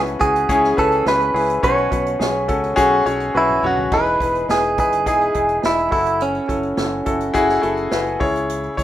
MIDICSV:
0, 0, Header, 1, 5, 480
1, 0, Start_track
1, 0, Key_signature, 4, "major"
1, 0, Tempo, 571374
1, 1377, Time_signature, 4, 2, 24, 8
1, 7422, End_track
2, 0, Start_track
2, 0, Title_t, "Clean electric guitar"
2, 0, Program_c, 0, 27
2, 175, Note_on_c, 0, 68, 86
2, 661, Note_off_c, 0, 68, 0
2, 664, Note_on_c, 0, 69, 94
2, 905, Note_off_c, 0, 69, 0
2, 908, Note_on_c, 0, 71, 104
2, 1377, Note_off_c, 0, 71, 0
2, 1380, Note_on_c, 0, 73, 103
2, 2785, Note_off_c, 0, 73, 0
2, 2835, Note_on_c, 0, 64, 86
2, 3073, Note_off_c, 0, 64, 0
2, 3078, Note_on_c, 0, 66, 80
2, 3308, Note_on_c, 0, 71, 96
2, 3314, Note_off_c, 0, 66, 0
2, 3749, Note_off_c, 0, 71, 0
2, 3787, Note_on_c, 0, 68, 94
2, 4021, Note_off_c, 0, 68, 0
2, 4031, Note_on_c, 0, 68, 86
2, 4259, Note_off_c, 0, 68, 0
2, 4269, Note_on_c, 0, 68, 86
2, 4749, Note_off_c, 0, 68, 0
2, 4752, Note_on_c, 0, 64, 90
2, 4965, Note_off_c, 0, 64, 0
2, 4975, Note_on_c, 0, 64, 72
2, 5223, Note_off_c, 0, 64, 0
2, 5226, Note_on_c, 0, 61, 82
2, 6628, Note_off_c, 0, 61, 0
2, 7422, End_track
3, 0, Start_track
3, 0, Title_t, "Grand piano"
3, 0, Program_c, 1, 0
3, 0, Control_c, 1, 64, 127
3, 0, Note_on_c, 1, 49, 65
3, 0, Note_on_c, 1, 61, 73
3, 0, Note_on_c, 1, 64, 69
3, 0, Note_on_c, 1, 66, 76
3, 0, Note_on_c, 1, 68, 79
3, 0, Note_on_c, 1, 71, 78
3, 145, Note_off_c, 1, 64, 0
3, 146, Note_off_c, 1, 61, 0
3, 147, Note_off_c, 1, 71, 0
3, 160, Note_on_c, 1, 61, 75
3, 163, Note_off_c, 1, 66, 0
3, 163, Note_on_c, 1, 64, 69
3, 163, Note_on_c, 1, 66, 76
3, 380, Note_off_c, 1, 61, 0
3, 381, Note_off_c, 1, 64, 0
3, 381, Note_off_c, 1, 66, 0
3, 412, Note_on_c, 1, 61, 99
3, 412, Note_on_c, 1, 64, 94
3, 414, Note_off_c, 1, 68, 0
3, 414, Note_on_c, 1, 68, 110
3, 626, Note_off_c, 1, 61, 0
3, 626, Note_off_c, 1, 64, 0
3, 627, Note_off_c, 1, 68, 0
3, 646, Note_on_c, 1, 61, 80
3, 648, Note_on_c, 1, 64, 64
3, 649, Note_on_c, 1, 71, 91
3, 863, Note_off_c, 1, 61, 0
3, 864, Note_off_c, 1, 64, 0
3, 864, Note_off_c, 1, 71, 0
3, 891, Note_on_c, 1, 61, 70
3, 897, Note_on_c, 1, 64, 62
3, 897, Note_on_c, 1, 68, 73
3, 1105, Note_off_c, 1, 61, 0
3, 1108, Note_off_c, 1, 64, 0
3, 1108, Note_off_c, 1, 68, 0
3, 1126, Note_on_c, 1, 61, 76
3, 1128, Note_on_c, 1, 64, 73
3, 1130, Note_on_c, 1, 68, 83
3, 1343, Note_off_c, 1, 61, 0
3, 1344, Note_off_c, 1, 64, 0
3, 1345, Note_off_c, 1, 68, 0
3, 1368, Note_on_c, 1, 61, 94
3, 1370, Note_on_c, 1, 66, 83
3, 1371, Note_on_c, 1, 47, 62
3, 1372, Note_on_c, 1, 71, 102
3, 1389, Control_c, 1, 64, 0
3, 1395, Note_off_c, 1, 49, 0
3, 1518, Control_c, 1, 64, 127
3, 1584, Note_off_c, 1, 61, 0
3, 1585, Note_off_c, 1, 66, 0
3, 1586, Note_off_c, 1, 71, 0
3, 1604, Note_on_c, 1, 61, 67
3, 1605, Note_on_c, 1, 71, 76
3, 1607, Note_on_c, 1, 66, 63
3, 1822, Note_off_c, 1, 61, 0
3, 1823, Note_off_c, 1, 66, 0
3, 1823, Note_off_c, 1, 71, 0
3, 1843, Note_on_c, 1, 61, 69
3, 1844, Note_on_c, 1, 66, 65
3, 1844, Note_on_c, 1, 68, 77
3, 2060, Note_off_c, 1, 47, 0
3, 2061, Note_off_c, 1, 61, 0
3, 2062, Note_off_c, 1, 66, 0
3, 2062, Note_off_c, 1, 68, 0
3, 2086, Note_on_c, 1, 61, 87
3, 2086, Note_on_c, 1, 69, 92
3, 2088, Note_on_c, 1, 66, 72
3, 2303, Note_off_c, 1, 61, 0
3, 2303, Note_off_c, 1, 69, 0
3, 2304, Note_off_c, 1, 66, 0
3, 2318, Note_on_c, 1, 61, 119
3, 2320, Note_on_c, 1, 68, 127
3, 2321, Note_on_c, 1, 66, 111
3, 2539, Note_off_c, 1, 61, 0
3, 2540, Note_off_c, 1, 66, 0
3, 2540, Note_off_c, 1, 68, 0
3, 2567, Note_on_c, 1, 61, 86
3, 2571, Note_on_c, 1, 73, 96
3, 2572, Note_on_c, 1, 66, 73
3, 2783, Note_off_c, 1, 61, 0
3, 2785, Note_off_c, 1, 73, 0
3, 2786, Note_off_c, 1, 66, 0
3, 2809, Note_on_c, 1, 61, 79
3, 2812, Note_on_c, 1, 66, 75
3, 2813, Note_on_c, 1, 71, 87
3, 3024, Note_off_c, 1, 61, 0
3, 3026, Note_off_c, 1, 66, 0
3, 3026, Note_off_c, 1, 71, 0
3, 3056, Note_on_c, 1, 61, 90
3, 3059, Note_on_c, 1, 73, 97
3, 3060, Note_on_c, 1, 66, 75
3, 3268, Note_off_c, 1, 61, 0
3, 3269, Note_off_c, 1, 73, 0
3, 3270, Note_off_c, 1, 66, 0
3, 3293, Note_on_c, 1, 63, 90
3, 3295, Note_on_c, 1, 64, 81
3, 3298, Note_on_c, 1, 52, 59
3, 3299, Note_on_c, 1, 68, 87
3, 3305, Control_c, 1, 64, 0
3, 3447, Control_c, 1, 64, 127
3, 3506, Note_off_c, 1, 63, 0
3, 3507, Note_off_c, 1, 64, 0
3, 3509, Note_off_c, 1, 68, 0
3, 3532, Note_on_c, 1, 63, 63
3, 3535, Note_on_c, 1, 64, 58
3, 3537, Note_on_c, 1, 71, 73
3, 3746, Note_off_c, 1, 63, 0
3, 3747, Note_off_c, 1, 64, 0
3, 3748, Note_off_c, 1, 71, 0
3, 3767, Note_on_c, 1, 63, 70
3, 3773, Note_on_c, 1, 71, 73
3, 3774, Note_on_c, 1, 64, 63
3, 3983, Note_off_c, 1, 63, 0
3, 3984, Note_off_c, 1, 52, 0
3, 3986, Note_off_c, 1, 71, 0
3, 3987, Note_off_c, 1, 64, 0
3, 4015, Note_on_c, 1, 63, 68
3, 4017, Note_on_c, 1, 64, 61
3, 4021, Note_on_c, 1, 71, 77
3, 4227, Note_off_c, 1, 63, 0
3, 4228, Note_off_c, 1, 64, 0
3, 4230, Note_off_c, 1, 71, 0
3, 4252, Note_on_c, 1, 63, 86
3, 4252, Note_on_c, 1, 64, 80
3, 4257, Note_on_c, 1, 68, 101
3, 4466, Note_off_c, 1, 63, 0
3, 4466, Note_off_c, 1, 64, 0
3, 4468, Note_off_c, 1, 68, 0
3, 4491, Note_on_c, 1, 63, 68
3, 4495, Note_on_c, 1, 64, 67
3, 4497, Note_on_c, 1, 68, 82
3, 4705, Note_off_c, 1, 63, 0
3, 4707, Note_off_c, 1, 64, 0
3, 4709, Note_off_c, 1, 68, 0
3, 4723, Note_on_c, 1, 63, 66
3, 4726, Note_on_c, 1, 64, 55
3, 4728, Note_on_c, 1, 68, 61
3, 4941, Note_off_c, 1, 63, 0
3, 4943, Note_off_c, 1, 64, 0
3, 4944, Note_off_c, 1, 68, 0
3, 4960, Note_on_c, 1, 64, 69
3, 4965, Note_on_c, 1, 66, 68
3, 4966, Note_on_c, 1, 69, 81
3, 4987, Control_c, 1, 64, 0
3, 5113, Control_c, 1, 64, 127
3, 5391, Note_off_c, 1, 64, 0
3, 5394, Note_off_c, 1, 66, 0
3, 5394, Note_off_c, 1, 69, 0
3, 5442, Note_on_c, 1, 64, 72
3, 5446, Note_on_c, 1, 69, 76
3, 5447, Note_on_c, 1, 66, 63
3, 5661, Note_off_c, 1, 64, 0
3, 5663, Note_off_c, 1, 66, 0
3, 5663, Note_off_c, 1, 69, 0
3, 5690, Note_on_c, 1, 64, 68
3, 5691, Note_on_c, 1, 66, 60
3, 5696, Note_on_c, 1, 69, 71
3, 5905, Note_off_c, 1, 64, 0
3, 5905, Note_off_c, 1, 66, 0
3, 5908, Note_off_c, 1, 69, 0
3, 5929, Note_on_c, 1, 66, 70
3, 5931, Note_on_c, 1, 69, 91
3, 5932, Note_on_c, 1, 64, 78
3, 6145, Note_off_c, 1, 66, 0
3, 6145, Note_off_c, 1, 69, 0
3, 6146, Note_off_c, 1, 64, 0
3, 6163, Note_on_c, 1, 64, 117
3, 6168, Note_on_c, 1, 68, 127
3, 6170, Note_on_c, 1, 66, 100
3, 6381, Note_off_c, 1, 64, 0
3, 6384, Note_off_c, 1, 68, 0
3, 6385, Note_off_c, 1, 66, 0
3, 6398, Note_on_c, 1, 64, 93
3, 6403, Note_on_c, 1, 66, 77
3, 6405, Note_on_c, 1, 69, 96
3, 6619, Note_off_c, 1, 64, 0
3, 6621, Note_off_c, 1, 66, 0
3, 6622, Note_off_c, 1, 69, 0
3, 6649, Note_on_c, 1, 66, 67
3, 6650, Note_on_c, 1, 64, 79
3, 6650, Note_on_c, 1, 71, 81
3, 6865, Note_off_c, 1, 64, 0
3, 6865, Note_off_c, 1, 66, 0
3, 6865, Note_off_c, 1, 71, 0
3, 6886, Note_on_c, 1, 49, 76
3, 6887, Note_on_c, 1, 64, 85
3, 6888, Note_on_c, 1, 68, 77
3, 6891, Note_on_c, 1, 73, 102
3, 6907, Control_c, 1, 64, 0
3, 7038, Control_c, 1, 64, 127
3, 7315, Note_off_c, 1, 64, 0
3, 7315, Note_off_c, 1, 68, 0
3, 7317, Note_off_c, 1, 73, 0
3, 7368, Note_on_c, 1, 64, 81
3, 7368, Note_on_c, 1, 68, 72
3, 7371, Note_on_c, 1, 73, 96
3, 7422, Note_off_c, 1, 49, 0
3, 7422, Note_off_c, 1, 64, 0
3, 7422, Note_off_c, 1, 68, 0
3, 7422, Note_off_c, 1, 73, 0
3, 7422, End_track
4, 0, Start_track
4, 0, Title_t, "Fingered electric bass"
4, 0, Program_c, 2, 33
4, 0, Note_on_c, 2, 37, 103
4, 130, Note_off_c, 2, 37, 0
4, 178, Note_on_c, 2, 37, 86
4, 374, Note_off_c, 2, 37, 0
4, 411, Note_on_c, 2, 37, 104
4, 610, Note_off_c, 2, 37, 0
4, 655, Note_on_c, 2, 37, 97
4, 853, Note_off_c, 2, 37, 0
4, 889, Note_on_c, 2, 37, 92
4, 1089, Note_off_c, 2, 37, 0
4, 1127, Note_on_c, 2, 37, 98
4, 1328, Note_off_c, 2, 37, 0
4, 1373, Note_on_c, 2, 35, 104
4, 1571, Note_off_c, 2, 35, 0
4, 1612, Note_on_c, 2, 35, 90
4, 1810, Note_off_c, 2, 35, 0
4, 1848, Note_on_c, 2, 35, 99
4, 2095, Note_off_c, 2, 35, 0
4, 2095, Note_on_c, 2, 37, 81
4, 2293, Note_off_c, 2, 37, 0
4, 2330, Note_on_c, 2, 35, 97
4, 2529, Note_off_c, 2, 35, 0
4, 2568, Note_on_c, 2, 35, 84
4, 2768, Note_off_c, 2, 35, 0
4, 2812, Note_on_c, 2, 35, 91
4, 3011, Note_off_c, 2, 35, 0
4, 3047, Note_on_c, 2, 35, 107
4, 3248, Note_off_c, 2, 35, 0
4, 3291, Note_on_c, 2, 28, 83
4, 3490, Note_off_c, 2, 28, 0
4, 3529, Note_on_c, 2, 28, 78
4, 3729, Note_off_c, 2, 28, 0
4, 3768, Note_on_c, 2, 28, 91
4, 4016, Note_off_c, 2, 28, 0
4, 4016, Note_on_c, 2, 30, 73
4, 4251, Note_off_c, 2, 30, 0
4, 4251, Note_on_c, 2, 28, 91
4, 4450, Note_off_c, 2, 28, 0
4, 4495, Note_on_c, 2, 28, 88
4, 4693, Note_off_c, 2, 28, 0
4, 4738, Note_on_c, 2, 28, 89
4, 4935, Note_off_c, 2, 28, 0
4, 4973, Note_on_c, 2, 30, 98
4, 5368, Note_off_c, 2, 30, 0
4, 5453, Note_on_c, 2, 30, 80
4, 5651, Note_off_c, 2, 30, 0
4, 5695, Note_on_c, 2, 30, 92
4, 5892, Note_off_c, 2, 30, 0
4, 5935, Note_on_c, 2, 30, 85
4, 6133, Note_off_c, 2, 30, 0
4, 6171, Note_on_c, 2, 30, 80
4, 6370, Note_off_c, 2, 30, 0
4, 6415, Note_on_c, 2, 30, 88
4, 6613, Note_off_c, 2, 30, 0
4, 6655, Note_on_c, 2, 30, 89
4, 6852, Note_off_c, 2, 30, 0
4, 6896, Note_on_c, 2, 37, 111
4, 7290, Note_off_c, 2, 37, 0
4, 7373, Note_on_c, 2, 37, 80
4, 7422, Note_off_c, 2, 37, 0
4, 7422, End_track
5, 0, Start_track
5, 0, Title_t, "Drums"
5, 55, Note_on_c, 9, 42, 36
5, 139, Note_off_c, 9, 42, 0
5, 172, Note_on_c, 9, 42, 74
5, 177, Note_on_c, 9, 36, 100
5, 256, Note_off_c, 9, 42, 0
5, 261, Note_off_c, 9, 36, 0
5, 300, Note_on_c, 9, 42, 55
5, 384, Note_off_c, 9, 42, 0
5, 413, Note_on_c, 9, 36, 89
5, 414, Note_on_c, 9, 42, 92
5, 497, Note_off_c, 9, 36, 0
5, 498, Note_off_c, 9, 42, 0
5, 537, Note_on_c, 9, 38, 36
5, 621, Note_off_c, 9, 38, 0
5, 656, Note_on_c, 9, 42, 63
5, 657, Note_on_c, 9, 36, 77
5, 740, Note_off_c, 9, 42, 0
5, 741, Note_off_c, 9, 36, 0
5, 770, Note_on_c, 9, 42, 41
5, 854, Note_off_c, 9, 42, 0
5, 894, Note_on_c, 9, 38, 116
5, 978, Note_off_c, 9, 38, 0
5, 1020, Note_on_c, 9, 42, 38
5, 1104, Note_off_c, 9, 42, 0
5, 1139, Note_on_c, 9, 46, 66
5, 1223, Note_off_c, 9, 46, 0
5, 1258, Note_on_c, 9, 42, 55
5, 1342, Note_off_c, 9, 42, 0
5, 1373, Note_on_c, 9, 36, 107
5, 1374, Note_on_c, 9, 42, 85
5, 1457, Note_off_c, 9, 36, 0
5, 1458, Note_off_c, 9, 42, 0
5, 1492, Note_on_c, 9, 42, 36
5, 1576, Note_off_c, 9, 42, 0
5, 1612, Note_on_c, 9, 36, 90
5, 1616, Note_on_c, 9, 42, 84
5, 1696, Note_off_c, 9, 36, 0
5, 1700, Note_off_c, 9, 42, 0
5, 1734, Note_on_c, 9, 42, 44
5, 1818, Note_off_c, 9, 42, 0
5, 1854, Note_on_c, 9, 38, 108
5, 1938, Note_off_c, 9, 38, 0
5, 2087, Note_on_c, 9, 42, 62
5, 2094, Note_on_c, 9, 36, 97
5, 2171, Note_off_c, 9, 42, 0
5, 2178, Note_off_c, 9, 36, 0
5, 2215, Note_on_c, 9, 42, 52
5, 2299, Note_off_c, 9, 42, 0
5, 2331, Note_on_c, 9, 42, 96
5, 2332, Note_on_c, 9, 36, 86
5, 2415, Note_off_c, 9, 42, 0
5, 2416, Note_off_c, 9, 36, 0
5, 2572, Note_on_c, 9, 42, 61
5, 2656, Note_off_c, 9, 42, 0
5, 2689, Note_on_c, 9, 42, 39
5, 2773, Note_off_c, 9, 42, 0
5, 2814, Note_on_c, 9, 48, 61
5, 2898, Note_off_c, 9, 48, 0
5, 2935, Note_on_c, 9, 47, 67
5, 3019, Note_off_c, 9, 47, 0
5, 3052, Note_on_c, 9, 45, 82
5, 3136, Note_off_c, 9, 45, 0
5, 3171, Note_on_c, 9, 43, 89
5, 3255, Note_off_c, 9, 43, 0
5, 3290, Note_on_c, 9, 49, 78
5, 3292, Note_on_c, 9, 36, 108
5, 3374, Note_off_c, 9, 49, 0
5, 3376, Note_off_c, 9, 36, 0
5, 3413, Note_on_c, 9, 42, 29
5, 3497, Note_off_c, 9, 42, 0
5, 3532, Note_on_c, 9, 36, 81
5, 3539, Note_on_c, 9, 42, 72
5, 3616, Note_off_c, 9, 36, 0
5, 3623, Note_off_c, 9, 42, 0
5, 3654, Note_on_c, 9, 42, 36
5, 3738, Note_off_c, 9, 42, 0
5, 3775, Note_on_c, 9, 38, 113
5, 3859, Note_off_c, 9, 38, 0
5, 3900, Note_on_c, 9, 42, 31
5, 3984, Note_off_c, 9, 42, 0
5, 4015, Note_on_c, 9, 42, 71
5, 4018, Note_on_c, 9, 36, 89
5, 4099, Note_off_c, 9, 42, 0
5, 4102, Note_off_c, 9, 36, 0
5, 4137, Note_on_c, 9, 42, 53
5, 4221, Note_off_c, 9, 42, 0
5, 4254, Note_on_c, 9, 36, 85
5, 4256, Note_on_c, 9, 42, 85
5, 4338, Note_off_c, 9, 36, 0
5, 4340, Note_off_c, 9, 42, 0
5, 4378, Note_on_c, 9, 42, 38
5, 4462, Note_off_c, 9, 42, 0
5, 4489, Note_on_c, 9, 42, 65
5, 4497, Note_on_c, 9, 36, 70
5, 4573, Note_off_c, 9, 42, 0
5, 4581, Note_off_c, 9, 36, 0
5, 4610, Note_on_c, 9, 42, 39
5, 4694, Note_off_c, 9, 42, 0
5, 4733, Note_on_c, 9, 38, 115
5, 4817, Note_off_c, 9, 38, 0
5, 4860, Note_on_c, 9, 42, 34
5, 4944, Note_off_c, 9, 42, 0
5, 4974, Note_on_c, 9, 36, 94
5, 4974, Note_on_c, 9, 46, 65
5, 5058, Note_off_c, 9, 36, 0
5, 5058, Note_off_c, 9, 46, 0
5, 5095, Note_on_c, 9, 42, 49
5, 5179, Note_off_c, 9, 42, 0
5, 5213, Note_on_c, 9, 42, 79
5, 5297, Note_off_c, 9, 42, 0
5, 5332, Note_on_c, 9, 42, 33
5, 5416, Note_off_c, 9, 42, 0
5, 5453, Note_on_c, 9, 36, 83
5, 5457, Note_on_c, 9, 42, 69
5, 5537, Note_off_c, 9, 36, 0
5, 5541, Note_off_c, 9, 42, 0
5, 5571, Note_on_c, 9, 42, 38
5, 5655, Note_off_c, 9, 42, 0
5, 5690, Note_on_c, 9, 38, 109
5, 5774, Note_off_c, 9, 38, 0
5, 5931, Note_on_c, 9, 42, 66
5, 5937, Note_on_c, 9, 36, 85
5, 6015, Note_off_c, 9, 42, 0
5, 6021, Note_off_c, 9, 36, 0
5, 6053, Note_on_c, 9, 42, 54
5, 6137, Note_off_c, 9, 42, 0
5, 6170, Note_on_c, 9, 42, 85
5, 6174, Note_on_c, 9, 36, 83
5, 6254, Note_off_c, 9, 42, 0
5, 6258, Note_off_c, 9, 36, 0
5, 6294, Note_on_c, 9, 38, 35
5, 6378, Note_off_c, 9, 38, 0
5, 6409, Note_on_c, 9, 42, 63
5, 6493, Note_off_c, 9, 42, 0
5, 6529, Note_on_c, 9, 42, 37
5, 6613, Note_off_c, 9, 42, 0
5, 6648, Note_on_c, 9, 38, 116
5, 6732, Note_off_c, 9, 38, 0
5, 6777, Note_on_c, 9, 42, 34
5, 6861, Note_off_c, 9, 42, 0
5, 6896, Note_on_c, 9, 36, 103
5, 6898, Note_on_c, 9, 46, 58
5, 6980, Note_off_c, 9, 36, 0
5, 6982, Note_off_c, 9, 46, 0
5, 7020, Note_on_c, 9, 42, 56
5, 7104, Note_off_c, 9, 42, 0
5, 7137, Note_on_c, 9, 42, 85
5, 7221, Note_off_c, 9, 42, 0
5, 7253, Note_on_c, 9, 42, 34
5, 7337, Note_off_c, 9, 42, 0
5, 7376, Note_on_c, 9, 36, 88
5, 7381, Note_on_c, 9, 42, 77
5, 7422, Note_off_c, 9, 36, 0
5, 7422, Note_off_c, 9, 42, 0
5, 7422, End_track
0, 0, End_of_file